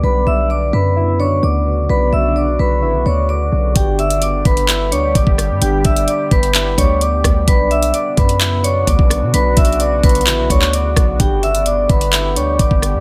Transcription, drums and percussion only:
3.76 kick, closed hi-hat
3.99 closed hi-hat
4.10 closed hi-hat
4.22 closed hi-hat
4.45 kick, closed hi-hat
4.57 closed hi-hat
4.68 clap, closed hi-hat
4.92 closed hi-hat
5.15 kick, closed hi-hat
5.27 kick
5.38 cross-stick, closed hi-hat
5.62 closed hi-hat
5.85 kick, closed hi-hat, open hi-hat
5.96 closed hi-hat
6.08 closed hi-hat
6.31 kick, closed hi-hat
6.43 closed hi-hat
6.55 clap, closed hi-hat
6.78 kick, closed hi-hat
7.01 closed hi-hat
7.24 kick, cross-stick, closed hi-hat
7.48 kick, closed hi-hat
7.71 closed hi-hat
7.83 closed hi-hat
7.94 closed hi-hat
8.17 kick, closed hi-hat
8.29 closed hi-hat
8.41 clap, closed hi-hat
8.64 closed hi-hat
8.87 kick, closed hi-hat
8.99 kick
9.10 cross-stick, closed hi-hat
9.34 closed hi-hat
9.57 kick, closed hi-hat, open hi-hat
9.65 closed hi-hat
9.73 closed hi-hat
9.80 closed hi-hat
10.03 kick, closed hi-hat
10.09 closed hi-hat
10.15 closed hi-hat
10.21 closed hi-hat
10.27 clap, closed hi-hat
10.50 kick, closed hi-hat
10.62 clap
10.73 closed hi-hat
10.96 kick, cross-stick, closed hi-hat
11.20 kick, closed hi-hat
11.43 closed hi-hat
11.55 closed hi-hat
11.66 closed hi-hat
11.89 kick, closed hi-hat
12.01 closed hi-hat
12.13 clap, closed hi-hat
12.36 closed hi-hat
12.59 kick, closed hi-hat
12.71 kick
12.82 cross-stick, closed hi-hat

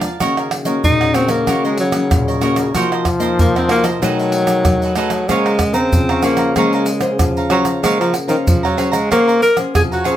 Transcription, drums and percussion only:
0.01 pandeiro, tamborim, shaker
0.20 pandeiro, tamborim, shaker, surdo
0.37 pandeiro, tamborim, shaker
0.51 pandeiro, tamborim
0.65 pandeiro, shaker
0.84 pandeiro, shaker, surdo
1.01 pandeiro, tamborim, shaker
1.14 pandeiro, tamborim, shaker
1.28 pandeiro, tamborim, shaker
1.47 pandeiro, tamborim, shaker, surdo
1.65 pandeiro, shaker
1.78 pandeiro
1.92 pandeiro, tamborim, shaker
2.11 pandeiro, tamborim, shaker, surdo
2.28 pandeiro, shaker
2.42 pandeiro, tamborim, shaker
2.56 pandeiro, tamborim, shaker
2.75 pandeiro, tamborim, shaker, surdo
2.92 pandeiro, tamborim, shaker
3.05 pandeiro, tamborim, shaker, surdo
3.20 pandeiro, shaker
3.39 pandeiro, shaker, surdo
3.56 pandeiro, tamborim, shaker
3.69 pandeiro, tamborim
3.84 pandeiro, tamborim, shaker
4.03 pandeiro, tamborim, shaker, surdo
4.19 pandeiro, shaker
4.32 pandeiro, shaker
4.47 pandeiro, tamborim, shaker
4.65 pandeiro, tamborim, shaker, surdo
4.82 pandeiro, shaker
4.95 pandeiro, tamborim, shaker
5.10 pandeiro, tamborim, shaker
5.29 pandeiro, tamborim, shaker, surdo
5.46 pandeiro, tamborim, shaker
5.59 pandeiro, tamborim, shaker, surdo
5.74 pandeiro, shaker
5.93 pandeiro, shaker, surdo
6.09 pandeiro, tamborim, shaker
6.23 pandeiro, tamborim, shaker
6.37 pandeiro, tamborim, shaker
6.56 pandeiro, tamborim, shaker, surdo
6.73 pandeiro, shaker
6.86 pandeiro, shaker
7.01 pandeiro, tamborim, shaker
7.19 pandeiro, tamborim, shaker, surdo
7.37 pandeiro, shaker
7.50 pandeiro, tamborim, shaker
7.65 pandeiro, tamborim, shaker
7.84 pandeiro, tamborim, shaker, surdo
8.01 pandeiro, tamborim, shaker
8.14 pandeiro, tamborim, shaker
8.29 pandeiro, shaker
8.47 pandeiro, shaker, surdo
8.65 pandeiro, tamborim, shaker
8.78 pandeiro, tamborim, shaker
8.93 pandeiro, tamborim, shaker
9.12 pandeiro, tamborim, shaker, surdo
9.29 pandeiro, shaker
9.42 pandeiro, shaker
9.57 pandeiro, tamborim, shaker
9.75 pandeiro, tamborim, shaker, surdo
9.92 pandeiro, shaker
10.05 pandeiro, tamborim, shaker

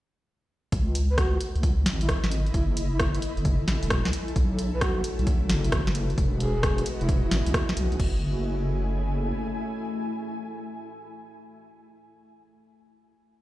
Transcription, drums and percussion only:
0.72 kick, closed hi-hat
0.95 closed hi-hat
1.18 kick, cross-stick, closed hi-hat
1.41 closed hi-hat
1.56 closed hi-hat
1.63 kick, closed hi-hat
1.86 snare, closed hi-hat
2.01 closed hi-hat
2.09 kick, cross-stick, closed hi-hat
2.24 snare
2.31 closed hi-hat
2.46 closed hi-hat
2.54 kick, closed hi-hat
2.77 closed hi-hat
3.00 kick, cross-stick, closed hi-hat
3.15 closed hi-hat
3.22 closed hi-hat
3.37 closed hi-hat
3.45 kick, closed hi-hat
3.68 snare, closed hi-hat
3.83 closed hi-hat
3.90 kick, cross-stick, closed hi-hat
4.05 snare
4.13 closed hi-hat
4.28 closed hi-hat
4.36 kick, closed hi-hat
4.59 closed hi-hat
4.81 kick, cross-stick, closed hi-hat
5.04 closed hi-hat
5.19 closed hi-hat
5.27 kick, closed hi-hat
5.50 snare, closed hi-hat
5.64 closed hi-hat
5.72 kick, cross-stick, closed hi-hat
5.87 snare
5.95 closed hi-hat
6.10 closed hi-hat
6.18 kick, closed hi-hat
6.40 closed hi-hat
6.63 kick, cross-stick, closed hi-hat
6.78 closed hi-hat
6.86 closed hi-hat
7.01 closed hi-hat
7.09 kick, closed hi-hat
7.31 snare, closed hi-hat
7.46 closed hi-hat
7.54 kick, cross-stick, closed hi-hat
7.69 snare
7.77 closed hi-hat
7.92 closed hi-hat
8.00 kick, crash

